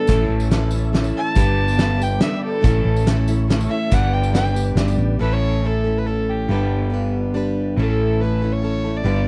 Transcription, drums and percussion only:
0.07 kick loud
0.07 closed hi-hat medium
0.07 tambourine loud
0.40 tambourine medium
0.51 snare medium
0.51 closed hi-hat medium
0.71 tambourine medium
0.94 snare medium
0.94 closed hi-hat medium
1.04 tambourine medium
1.35 kick loud
1.35 closed hi-hat medium
1.35 tambourine medium
1.68 tambourine medium
1.79 snare medium
1.79 closed hi-hat medium
2.02 tambourine medium
2.20 snare medium
2.20 closed hi-hat medium
2.64 kick loud
2.64 closed hi-hat medium
2.64 tambourine medium
2.96 tambourine medium
3.07 snare medium
3.07 closed hi-hat medium
3.28 tambourine medium
3.50 snare medium
3.50 closed hi-hat medium
3.61 tambourine medium
3.91 kick loud
3.91 closed hi-hat medium
3.91 tambourine medium
4.23 tambourine medium
4.34 snare medium
4.34 closed hi-hat medium
4.34 tambourine soft
4.45 tambourine soft
4.56 tambourine medium
4.77 snare medium
4.77 closed hi-hat medium
4.77 tambourine soft
4.88 tambourine medium
4.98 tambourine soft

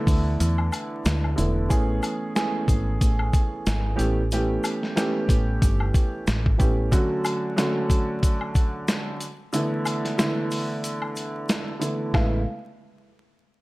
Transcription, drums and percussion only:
0.07 kick loud
0.07 open hi-hat medium
0.07 shaker medium
0.40 closed hi-hat loud
0.40 shaker medium
0.58 high woodblock medium
0.72 closed hi-hat medium
0.72 high woodblock medium
0.72 shaker soft
1.05 snare loud
1.05 closed hi-hat medium
1.05 shaker medium
1.24 high woodblock medium
1.38 closed hi-hat medium
1.38 shaker medium
1.70 kick loud
1.70 closed hi-hat medium
1.70 shaker medium
2.03 closed hi-hat medium
2.03 high woodblock medium
2.03 shaker medium
2.36 snare loud
2.36 closed hi-hat medium
2.36 shaker medium
2.68 kick medium
2.68 closed hi-hat medium
2.68 shaker medium
3.01 kick medium
3.01 closed hi-hat loud
3.01 shaker medium
3.19 high woodblock medium
3.34 kick loud
3.34 closed hi-hat medium
3.34 shaker soft
3.66 snare loud
3.66 closed hi-hat medium
3.66 shaker medium
3.99 closed hi-hat medium
3.99 shaker medium
4.32 closed hi-hat loud
4.32 shaker medium
4.64 closed hi-hat medium
4.64 high woodblock medium
4.64 shaker medium
4.83 snare soft
4.97 snare loud
4.97 closed hi-hat medium
4.97 shaker medium
5.29 kick medium
5.29 closed hi-hat medium
5.29 shaker medium
5.62 kick loud
5.62 closed hi-hat loud
5.62 shaker medium
5.80 high woodblock medium
5.94 kick loud
5.94 closed hi-hat medium
5.94 shaker soft
6.27 snare loud
6.27 closed hi-hat medium
6.27 shaker medium
6.46 kick loud
6.60 kick loud
6.60 closed hi-hat medium
6.60 shaker medium
6.92 kick loud
6.92 closed hi-hat medium
6.92 shaker medium
7.25 closed hi-hat medium
7.25 high woodblock medium
7.25 shaker medium
7.58 snare loud
7.58 closed hi-hat medium
7.58 shaker medium
7.90 kick loud
7.90 closed hi-hat medium
7.90 shaker medium
8.23 kick loud
8.23 closed hi-hat loud
8.23 shaker medium
8.41 high woodblock medium
8.55 kick loud
8.55 closed hi-hat medium
8.55 shaker soft
8.88 snare loud
8.88 closed hi-hat medium
8.88 shaker medium
9.21 closed hi-hat medium
9.21 shaker medium
9.53 closed hi-hat medium
9.53 shaker medium
9.85 closed hi-hat medium
9.85 high woodblock medium
9.85 shaker medium
10.05 snare soft
10.05 closed hi-hat medium
10.19 snare loud
10.19 closed hi-hat medium
10.19 shaker medium
10.51 open hi-hat medium
10.51 shaker medium
10.84 closed hi-hat loud
10.84 shaker medium
11.02 high woodblock medium
11.16 closed hi-hat medium
11.16 shaker soft
11.49 snare loud
11.49 closed hi-hat medium
11.49 shaker medium
11.82 closed hi-hat medium
11.82 shaker medium
12.14 kick loud
12.14 snare medium
12.14 high woodblock medium

